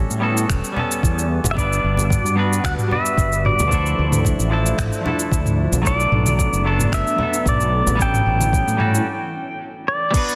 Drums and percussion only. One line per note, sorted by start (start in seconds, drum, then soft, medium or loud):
0.11 shaker soft
0.37 shaker medium
0.50 finger snap medium
0.50 kick loud
0.50 shaker medium
0.64 shaker soft
0.76 low conga medium
0.92 shaker medium
1.03 kick loud
1.03 shaker medium
1.19 shaker soft
1.44 high conga medium
1.44 low conga medium
1.44 shaker medium
1.57 kick loud
1.57 shaker soft
1.73 shaker soft
1.97 high conga medium
1.97 shaker medium
2.10 kick loud
2.10 mid tom medium
2.10 shaker medium
2.26 shaker soft
2.53 shaker medium
2.64 finger snap medium
2.64 kick loud
2.64 shaker medium
2.78 mid tom medium
2.78 shaker soft
2.91 low conga medium
3.06 shaker medium
3.18 kick loud
3.18 shaker medium
3.32 shaker soft
3.45 mid tom medium
3.59 high conga medium
3.59 low conga medium
3.59 shaker medium
3.71 kick loud
3.71 shaker soft
3.86 shaker soft
4.12 mid tom medium
4.12 high conga medium
4.12 shaker medium
4.25 kick medium
4.25 shaker medium
4.40 shaker soft
4.66 shaker medium
4.78 finger snap medium
4.78 kick medium
4.78 mid tom medium
4.78 shaker medium
4.93 shaker soft
5.06 low conga medium
5.19 shaker medium
5.32 kick loud
5.32 shaker medium
5.46 mid tom medium
5.46 shaker soft
5.73 high conga soft
5.73 low conga medium
5.73 shaker medium
5.85 kick loud
5.85 shaker soft
6.00 shaker soft
6.12 mid tom medium
6.26 high conga medium
6.26 shaker medium
6.39 kick medium
6.39 shaker medium
6.53 shaker soft
6.80 mid tom medium
6.80 shaker medium
6.92 finger snap medium
6.92 kick loud
6.92 shaker medium
7.07 shaker soft
7.19 low conga medium
7.34 shaker medium
7.46 kick medium
7.46 mid tom medium
7.46 shaker medium
7.60 shaker soft
7.87 high conga medium
7.87 low conga medium
7.87 shaker medium
7.99 kick loud
7.99 shaker soft
8.14 mid tom medium
8.14 shaker soft
8.41 high conga medium
8.41 shaker medium
8.53 kick loud
8.53 shaker medium
8.68 shaker soft
8.80 mid tom medium
8.95 shaker medium
10.14 kick loud
10.14 closed hi-hat medium
10.14 crash loud
10.14 shaker medium
10.29 shaker soft